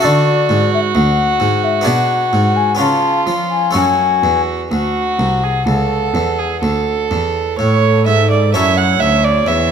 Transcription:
Already playing: F#4
0.00 D3 A3 F#4 A4
0.04 D3 D5
0.49 G#2
0.74 E5
0.95 D2 F#5
1.40 G#2
1.64 E5
1.81 B3 D4 G#4
1.86 B2 F#5
2.33 G#2
2.57 G#5
2.75 B3 C#4 F4
2.79 C#3 F4 A5
3.27 F3
3.51 G#5
3.71 A3 C#4 F#4
3.75 F#2 F#4 G#5
4.23 E2
4.71 D2 F#4 F#5
5.19 C2
5.43 G#4
5.66 C#2 A4
6.14 E2
6.39 G#4
6.62 D2 A4
7.11 E2
7.59 A2 A4 C#5
8.07 G#2 E5
8.31 D5
8.54 F#2 A3 C#4 E4 C#5 E5
8.77 F#5
9.00 D2 E5
9.24 D5
9.47 E2 E5

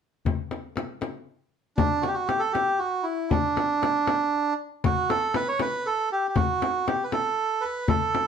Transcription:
0.25 tombak dum, frame drum
0.51 tombak tek, frame drum
0.63 tombak ka
0.76 tombak tek, frame drum
1.01 tombak tek, frame drum
1.77 D4, tombak dum, frame drum
2.02 F#4, tombak tek, frame drum
2.07 G4
2.14 F#4
2.27 G4, tombak tek, frame drum
2.39 A4
2.52 G4, tombak tek, frame drum
2.79 F#4, tombak ka
3.03 E4
3.30 D4, tombak dum, frame drum
3.57 tombak tek, frame drum
3.82 tombak tek, frame drum
4.07 tombak tek, frame drum
4.34 tombak ka
4.84 F#4, frame drum, tombak dum
5.10 A4, tombak tek, frame drum
5.34 B4, tombak tek, frame drum
5.48 C#5
5.59 B4, tombak tek, frame drum
5.86 A4, tombak ka
6.12 G4
6.29 G4
6.36 F#4, frame drum, tombak dum
6.62 tombak tek, frame drum
6.87 G4, tombak tek, frame drum
7.04 B4
7.12 A4, tombak tek, frame drum
7.61 B4, tombak ka
7.88 A4, tombak dum, frame drum
8.15 tombak tek, frame drum

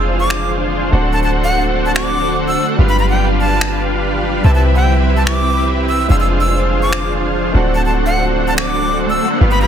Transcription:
Already playing: F1 D3 F3 G#3 C4 D4 F4 G#4 C5 F5
0.20 D6
0.30 finger snap
0.91 D1 F#3 A3 C4 D4 F#4 A4 C5 F#5
0.95 C5
1.13 A5
1.23 A5
1.44 F#5
1.86 A5
1.95 D6, finger snap
2.48 E6
2.77 G1 F3 G3 B3 D4 F4 G4 B4 F5
2.81 B4
2.89 B5
2.99 B5
3.09 G5
3.40 A5
3.61 finger snap
4.42 C2 C3 E3 G3 C4 E4 G4 B4 E5 A5
4.46 B4
4.55 A5
4.76 G5
5.17 A5
5.27 D6, finger snap
5.89 E6
6.08 F1 D3 F3 G#3 C4 D4 F4 G#4 C5 F5 E6
6.12 C5
6.20 E6
6.41 E6
6.82 D6
6.93 finger snap
7.52 D1 F#3 A3 C4 D4 F#4 A4 C5 F#5
7.75 A5, riser
7.86 A5
8.06 F#5
8.48 A5
8.58 D6, finger snap
9.10 E6
9.39 G1 G3 B3 D4 F4 G4 B4 F5
9.51 B5
9.61 B5

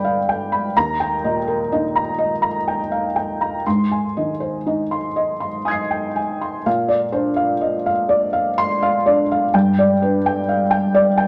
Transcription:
Already playing: G2 D3 D4 B4 D5 G5 B5
0.04 F5
0.29 G5
0.52 B5
0.77 D#2 A#5
1.00 G5
1.24 A#2 D#5
1.48 A#4
1.72 D#4 D#5
1.96 A#5
2.18 D#5
2.42 A#5
2.68 G5
2.92 F5
3.16 G5
3.41 A#5
3.67 G#2 C6
3.91 G#5
4.17 D#3 D#5
4.40 C5
4.66 D#4 D#5
4.91 C6
5.16 D#5
5.40 C6
5.65 G#5 D#6 G#6
5.71 C7
5.91 G5
6.16 G#5
6.41 C6
6.66 A#2 F5
6.88 D5
7.12 D4 C5
7.36 F5
7.61 D#5
7.86 F5
8.09 D5
8.33 F5
8.58 C6
8.82 F5
9.06 D4 D5
9.32 F5
9.54 G2 G5
9.79 D5
10.02 D4 B4
10.26 G5
10.49 F5
10.71 G5
10.95 D5
11.18 G5

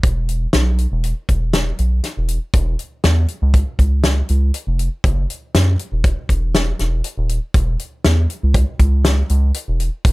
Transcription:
0.03 E1, kick, closed hi-hat
0.29 closed hi-hat
0.53 B1, snare, closed hi-hat
0.78 closed hi-hat
0.92 E1
1.04 closed hi-hat
1.29 E1, kick, closed hi-hat
1.53 snare, closed hi-hat
1.79 B1, closed hi-hat
2.04 snare, closed hi-hat
2.17 E1
2.28 closed hi-hat
2.54 E1, kick, closed hi-hat
2.79 closed hi-hat
3.04 E2, snare, closed hi-hat
3.28 closed hi-hat
3.42 C#2
3.54 kick, closed hi-hat
3.79 C#2, kick, closed hi-hat
4.04 snare, closed hi-hat
4.29 C#2, closed hi-hat
4.54 closed hi-hat
4.67 F1
4.79 closed hi-hat
5.04 F#1, kick, closed hi-hat
5.30 closed hi-hat
5.55 F#2, snare, closed hi-hat
5.79 closed hi-hat
5.92 E1
6.04 kick, closed hi-hat
6.29 E1, kick, closed hi-hat
6.55 snare, closed hi-hat
6.79 E1, snare, closed hi-hat
7.04 closed hi-hat
7.18 D#1
7.29 closed hi-hat
7.54 E1, kick, closed hi-hat
7.79 closed hi-hat
8.04 E2, snare, closed hi-hat
8.30 closed hi-hat
8.43 C#2
8.54 kick, closed hi-hat
8.79 C#2, kick, closed hi-hat
9.05 snare, closed hi-hat
9.29 C#2, closed hi-hat
9.54 closed hi-hat
9.68 E1
9.80 closed hi-hat
10.05 E1, kick, closed hi-hat

